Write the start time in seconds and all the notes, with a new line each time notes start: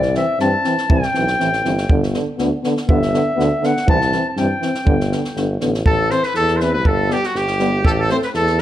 Already playing: C2 D5
0.02 snare
0.14 E3 C4 E5, snare
0.39 G2 E3 C4 A5, snare
0.64 E3 C4, snare
0.77 snare
0.89 C2 E3 C4 G5, kick
1.02 snare
1.13 B1 E3 C4, snare
1.27 snare
1.38 A1 E3 C4, snare
1.53 snare
1.64 G1 E3 C4, snare
1.77 snare
1.88 G1 D3 B3, kick
2.03 snare
2.13 D3 B3, snare
2.38 D2 D3 B3, snare
2.63 D3 B3, snare
2.77 snare
2.88 G1 D3 B3 E5, kick
3.02 snare
3.13 D3 B3, snare
3.36 D2 D3 B3, snare
3.62 D3 B3 F#5, snare
3.77 snare
3.87 C2 E3 C4 A5, kick
4.01 snare
4.12 E3 C4, snare
4.30 A5
4.37 G2 E3 C4 G5, snare
4.60 E3 C4, snare
4.74 snare
4.85 G1 D3 B3, kick
5.00 snare
5.11 D3 B3, snare
5.24 snare
5.35 G1 D3 B3, snare
5.61 A1 D3 B3, snare
5.74 snare
5.85 A1 A4, kick
6.10 E3 C4 C5, snare
6.23 B4, snare
6.34 E2 A4, snare
6.48 snare
6.57 C5, snare
6.61 E3 C4 B4
6.73 B4
6.84 G1 A4, kick
6.89 A4
7.09 G3 B3 G4, snare
7.23 F#4, snare
7.35 G1 G4, snare
7.47 snare
7.59 G3 B3, snare
7.84 A1 A4, kick
7.90 G4
8.00 A4
8.09 A3 C4 C5, snare
8.22 B4, snare
8.34 E2 A4, snare
8.47 snare
8.58 A3, snare